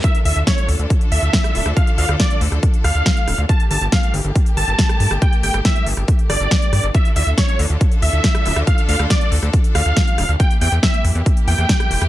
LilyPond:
<<
  \new Staff \with { instrumentName = "Supersaw synth" } { \time 4/4 \key d \minor \tempo 4 = 139 e''8 e''8 cis''8 r4 e''4. | f''8 f''8 d''8 r4 f''4. | a''8 a''8 f''8 r4 a''4. | g''8 g''8 e''8 r4 d''4. |
e''8 e''8 cis''8 r4 e''4. | f''8 f''8 d''8 r4 f''4. | g''8 g''8 e''8 r4 g''4. | }
  \new Staff \with { instrumentName = "String section" } { \time 4/4 \key d \minor <d d' f' a'>1~ | <d d' f' a'>1 | <a bes g'>1~ | <a bes g'>1 |
<d d' f' a'>1~ | <d d' f' a'>1 | <bes e' g'>1 | }
  \new Staff \with { instrumentName = "Analog synth bass" } { \clef bass \time 4/4 \key d \minor r8 d,16 d,16 r8 d,16 d,16 r8 d,16 d,16 r8 d,,16 d,16 | r8 d,16 d,16 r8 d,16 d,16 r8 d,16 d,16 r8 d,,16 d,16 | r8 g,,16 g,,16 r8 g,,16 g,,16 r8 g,,16 g,,16 r8 g,16 g,,16 | r8 g,,16 g,,16 r8 g,,16 g,,16 r8 g,,16 g,,16 r8 g,16 g,,16 |
r8 d,16 d,16 r8 d,16 d,16 r8 d,16 d,16 r8 d,,16 d,16 | r8 d,16 d,16 r8 d,16 d,16 r8 d,16 d,16 r8 d,,16 d,16 | r8 e,16 e,16 r8 e,16 e,16 r8 e,16 e,16 r8 e,,16 e,16 | }
  \new DrumStaff \with { instrumentName = "Drums" } \drummode { \time 4/4 <hh bd>16 hh16 hho16 hh16 <hh bd sn>16 hh16 hho16 hh16 <hh bd>16 hh16 hho16 hh16 <hh bd sn>16 <hh ss>16 hho16 <hh ss>16 | <hh bd>16 hh16 hho16 <hh ss>16 <hh bd sn>16 hh16 hho16 <hh ss>16 <hh bd>16 hh16 <hho ss>8 <hh bd sn>16 hh16 <hho ss>16 hh16 | <hh bd>16 hh16 hho16 hh16 <hh bd sn>16 hh16 hho16 hh16 <hh bd>16 hh16 hho16 hh16 <hh bd sn>16 <hh ss>16 hho16 <hh ss>16 | <hh bd>16 hh16 hho16 <hh ss>16 <hh bd sn>16 hh16 hho16 ss16 <hh bd>16 hh16 <hho ss>16 hh16 <hh bd sn>16 hh16 <hho ss>16 hh16 |
<hh bd>16 hh16 hho16 hh16 <hh bd sn>16 hh16 hho16 hh16 <hh bd>16 hh16 hho8 <hh bd sn>16 <hh ss>16 hho16 <hh ss>16 | <hh bd>16 hh16 hho16 <hh ss>16 <hh bd sn>16 hh16 hho16 <hh ss>16 <hh bd>16 hh16 <hho ss>16 hh16 <hh bd sn>16 hh16 <hho ss>16 hh16 | <hh bd>16 hh16 hho16 hh16 <hh bd sn>16 hh16 hho16 hh16 <hh bd>16 hh16 hho16 hh16 <hh bd sn>16 <hh ss>16 hho16 <hh ss>16 | }
>>